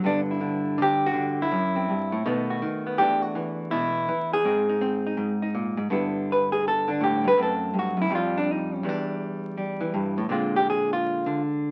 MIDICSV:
0, 0, Header, 1, 2, 480
1, 0, Start_track
1, 0, Key_signature, 1, "major"
1, 0, Tempo, 366077
1, 52, Time_signature, 4, 2, 24, 8
1, 15355, End_track
2, 0, Start_track
2, 0, Title_t, "Hollow-body jazz guitar"
2, 0, Program_c, 0, 26
2, 50, Note_on_c, 0, 43, 63
2, 61, Note_on_c, 0, 50, 41
2, 72, Note_on_c, 0, 59, 44
2, 81, Note_on_c, 0, 62, 90
2, 261, Note_off_c, 0, 62, 0
2, 403, Note_on_c, 0, 64, 87
2, 518, Note_off_c, 0, 50, 0
2, 534, Note_on_c, 0, 50, 56
2, 1006, Note_off_c, 0, 50, 0
2, 1021, Note_on_c, 0, 50, 67
2, 1036, Note_off_c, 0, 64, 0
2, 1078, Note_on_c, 0, 67, 105
2, 1396, Note_on_c, 0, 66, 98
2, 1475, Note_off_c, 0, 50, 0
2, 1490, Note_on_c, 0, 50, 61
2, 1843, Note_off_c, 0, 67, 0
2, 1863, Note_on_c, 0, 64, 83
2, 1960, Note_off_c, 0, 43, 0
2, 1971, Note_off_c, 0, 59, 0
2, 1977, Note_off_c, 0, 50, 0
2, 1989, Note_on_c, 0, 42, 72
2, 2014, Note_off_c, 0, 66, 0
2, 2304, Note_on_c, 0, 60, 43
2, 2467, Note_off_c, 0, 42, 0
2, 2479, Note_on_c, 0, 43, 57
2, 2783, Note_on_c, 0, 45, 56
2, 2784, Note_off_c, 0, 43, 0
2, 2929, Note_off_c, 0, 60, 0
2, 2948, Note_off_c, 0, 45, 0
2, 2957, Note_on_c, 0, 47, 74
2, 2963, Note_on_c, 0, 51, 50
2, 2970, Note_off_c, 0, 64, 0
2, 2971, Note_on_c, 0, 57, 52
2, 2979, Note_on_c, 0, 59, 49
2, 3282, Note_on_c, 0, 66, 46
2, 3420, Note_off_c, 0, 51, 0
2, 3433, Note_off_c, 0, 47, 0
2, 3436, Note_on_c, 0, 51, 57
2, 3741, Note_off_c, 0, 59, 0
2, 3757, Note_on_c, 0, 59, 48
2, 3892, Note_off_c, 0, 51, 0
2, 3901, Note_off_c, 0, 57, 0
2, 3904, Note_off_c, 0, 66, 0
2, 3909, Note_on_c, 0, 67, 108
2, 3917, Note_off_c, 0, 59, 0
2, 3919, Note_on_c, 0, 40, 64
2, 3930, Note_on_c, 0, 52, 43
2, 3932, Note_on_c, 0, 57, 48
2, 3944, Note_on_c, 0, 62, 47
2, 4223, Note_off_c, 0, 67, 0
2, 4223, Note_on_c, 0, 66, 89
2, 4381, Note_off_c, 0, 52, 0
2, 4396, Note_on_c, 0, 52, 63
2, 4861, Note_off_c, 0, 66, 0
2, 4866, Note_on_c, 0, 64, 99
2, 4881, Note_on_c, 0, 47, 68
2, 5342, Note_off_c, 0, 52, 0
2, 5356, Note_off_c, 0, 47, 0
2, 5357, Note_on_c, 0, 52, 61
2, 5662, Note_off_c, 0, 64, 0
2, 5683, Note_on_c, 0, 68, 107
2, 5815, Note_off_c, 0, 52, 0
2, 5824, Note_off_c, 0, 40, 0
2, 5824, Note_off_c, 0, 57, 0
2, 5829, Note_on_c, 0, 44, 61
2, 5830, Note_off_c, 0, 62, 0
2, 5837, Note_on_c, 0, 60, 48
2, 5851, Note_on_c, 0, 63, 47
2, 6139, Note_off_c, 0, 63, 0
2, 6155, Note_on_c, 0, 63, 46
2, 6296, Note_off_c, 0, 60, 0
2, 6312, Note_on_c, 0, 60, 56
2, 6626, Note_off_c, 0, 63, 0
2, 6641, Note_on_c, 0, 63, 46
2, 6766, Note_off_c, 0, 44, 0
2, 6781, Note_on_c, 0, 44, 69
2, 7096, Note_off_c, 0, 63, 0
2, 7111, Note_on_c, 0, 63, 44
2, 7272, Note_on_c, 0, 46, 56
2, 7554, Note_off_c, 0, 44, 0
2, 7570, Note_on_c, 0, 44, 66
2, 7585, Note_off_c, 0, 46, 0
2, 7732, Note_off_c, 0, 44, 0
2, 7733, Note_off_c, 0, 60, 0
2, 7737, Note_off_c, 0, 63, 0
2, 7737, Note_on_c, 0, 43, 65
2, 7746, Note_on_c, 0, 50, 45
2, 7760, Note_on_c, 0, 59, 48
2, 7764, Note_off_c, 0, 68, 0
2, 7770, Note_on_c, 0, 64, 40
2, 8290, Note_on_c, 0, 71, 73
2, 8547, Note_off_c, 0, 71, 0
2, 8552, Note_on_c, 0, 68, 84
2, 8717, Note_off_c, 0, 68, 0
2, 8757, Note_on_c, 0, 69, 95
2, 9003, Note_off_c, 0, 50, 0
2, 9019, Note_on_c, 0, 50, 63
2, 9035, Note_off_c, 0, 64, 0
2, 9048, Note_off_c, 0, 69, 0
2, 9049, Note_on_c, 0, 62, 50
2, 9186, Note_on_c, 0, 45, 60
2, 9206, Note_off_c, 0, 62, 0
2, 9225, Note_on_c, 0, 67, 77
2, 9480, Note_off_c, 0, 43, 0
2, 9496, Note_on_c, 0, 43, 65
2, 9502, Note_off_c, 0, 45, 0
2, 9522, Note_off_c, 0, 67, 0
2, 9541, Note_on_c, 0, 71, 107
2, 9651, Note_off_c, 0, 43, 0
2, 9656, Note_on_c, 0, 42, 67
2, 9657, Note_off_c, 0, 59, 0
2, 9661, Note_off_c, 0, 50, 0
2, 9666, Note_on_c, 0, 54, 47
2, 9676, Note_on_c, 0, 57, 44
2, 9686, Note_on_c, 0, 60, 44
2, 9692, Note_off_c, 0, 71, 0
2, 9736, Note_on_c, 0, 69, 73
2, 10138, Note_off_c, 0, 42, 0
2, 10144, Note_on_c, 0, 43, 57
2, 10185, Note_off_c, 0, 69, 0
2, 10213, Note_on_c, 0, 66, 73
2, 10443, Note_off_c, 0, 43, 0
2, 10448, Note_on_c, 0, 42, 61
2, 10495, Note_off_c, 0, 66, 0
2, 10511, Note_on_c, 0, 64, 79
2, 10610, Note_off_c, 0, 54, 0
2, 10612, Note_off_c, 0, 42, 0
2, 10614, Note_off_c, 0, 57, 0
2, 10617, Note_on_c, 0, 41, 79
2, 10619, Note_off_c, 0, 60, 0
2, 10628, Note_on_c, 0, 53, 50
2, 10643, Note_on_c, 0, 55, 55
2, 10656, Note_off_c, 0, 64, 0
2, 10687, Note_on_c, 0, 65, 88
2, 10972, Note_off_c, 0, 65, 0
2, 10981, Note_on_c, 0, 62, 81
2, 11174, Note_off_c, 0, 62, 0
2, 11174, Note_on_c, 0, 63, 90
2, 11464, Note_off_c, 0, 63, 0
2, 11464, Note_on_c, 0, 61, 88
2, 11565, Note_off_c, 0, 41, 0
2, 11568, Note_off_c, 0, 53, 0
2, 11582, Note_on_c, 0, 40, 71
2, 11596, Note_on_c, 0, 52, 34
2, 11597, Note_off_c, 0, 55, 0
2, 11602, Note_on_c, 0, 55, 47
2, 11653, Note_off_c, 0, 61, 0
2, 11653, Note_on_c, 0, 62, 69
2, 12550, Note_off_c, 0, 55, 0
2, 12555, Note_on_c, 0, 55, 49
2, 12841, Note_off_c, 0, 52, 0
2, 12857, Note_on_c, 0, 52, 58
2, 13024, Note_off_c, 0, 40, 0
2, 13030, Note_on_c, 0, 43, 61
2, 13058, Note_off_c, 0, 62, 0
2, 13340, Note_off_c, 0, 43, 0
2, 13346, Note_on_c, 0, 45, 67
2, 13484, Note_off_c, 0, 52, 0
2, 13489, Note_off_c, 0, 45, 0
2, 13494, Note_on_c, 0, 46, 64
2, 13507, Note_on_c, 0, 50, 45
2, 13511, Note_off_c, 0, 55, 0
2, 13516, Note_on_c, 0, 56, 45
2, 13521, Note_on_c, 0, 60, 43
2, 13534, Note_on_c, 0, 65, 47
2, 13831, Note_off_c, 0, 65, 0
2, 13851, Note_on_c, 0, 67, 91
2, 14001, Note_off_c, 0, 67, 0
2, 14026, Note_on_c, 0, 68, 90
2, 14316, Note_off_c, 0, 68, 0
2, 14331, Note_on_c, 0, 65, 98
2, 14752, Note_off_c, 0, 50, 0
2, 14766, Note_off_c, 0, 46, 0
2, 14768, Note_on_c, 0, 50, 59
2, 14958, Note_off_c, 0, 65, 0
2, 15355, Note_off_c, 0, 50, 0
2, 15355, Note_off_c, 0, 56, 0
2, 15355, Note_off_c, 0, 60, 0
2, 15355, End_track
0, 0, End_of_file